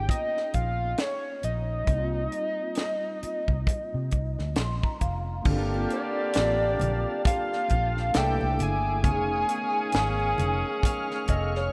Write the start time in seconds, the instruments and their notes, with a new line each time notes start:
Already playing: tine electric piano A#3 B3 C#4 D#4 F4 G#4 C#5, analog synth lead G5
0.09 analog synth lead D#5, kick, closed hi-hat
0.37 snare
0.54 fingered electric bass A#1, analog synth lead F5, kick, closed hi-hat
0.98 analog synth lead C#5, snare, closed hi-hat
1.43 fingered electric bass A#1, analog synth lead D#5, closed hi-hat
1.84 fingered electric bass C2, tine electric piano G3 A#3, kick, closed hi-hat
1.88 tine electric piano C4 D#4 E4
1.98 tine electric piano F4
2.32 closed hi-hat
2.75 snare, closed hi-hat
3.23 muted fingered electric bass stroke, closed hi-hat
3.48 fingered electric bass C2, kick
3.67 kick, closed hi-hat
3.94 fingered electric bass C3
4.11 fingered electric bass C2, kick, closed hi-hat
4.39 fingered electric bass D2, snare
4.56 fingered electric bass A#1, tine electric piano C6, snare, closed hi-hat
4.83 tine electric piano A#5, kick
5.01 fingered electric bass F1, tine electric piano F5, kick, closed hi-hat
5.42 fingered electric bass G1, horn section D3 A#3 G4, tine electric piano A#3 C4 D4, tonewheel organ G4 F5 A5, kick, crash
5.46 tine electric piano F4 A4, muted conga, low conga
5.74 muted conga
5.90 analog synth lead D5, closed hi-hat
6.33 fingered electric bass A1, snare, closed hi-hat, high conga
6.80 fingered electric bass A#1, closed hi-hat, high conga, low conga
7.25 analog synth lead F5, kick, closed hi-hat, muted conga, high conga
7.53 snare, muted conga
7.68 fingered electric bass A#1, kick, closed hi-hat, high conga
7.97 snare
8.12 fingered electric bass C2, horn section E3 D4 A4, tine electric piano A3 A#3 D4 E4, tonewheel organ E5 D6, snare, closed hi-hat, muted conga
8.17 tine electric piano G#4, analog synth lead G5
8.23 tine electric piano A4
8.41 fingered electric bass C2, high conga
8.59 fingered electric bass G1, analog synth lead G#5, closed hi-hat, low conga
9.01 fingered electric bass F1, horn section D#3 C#4 G#4, tine electric piano A3 B3, tonewheel organ F5 C#6 D#6, kick, closed hi-hat
9.05 tine electric piano C#4 D#4, low conga
9.09 tine electric piano G#4
9.49 closed hi-hat
9.92 fingered electric bass G#1, snare, closed hi-hat, high conga
10.20 muted conga
10.38 fingered electric bass F1, closed hi-hat, high conga, low conga
10.82 tonewheel organ F6, kick, closed hi-hat, muted conga, high conga
11.11 snare, muted conga
11.26 fingered electric bass F1, clean electric guitar D#5, kick, closed hi-hat, high conga
11.30 clean electric guitar A4
11.55 clean electric guitar G#4 C#5, snare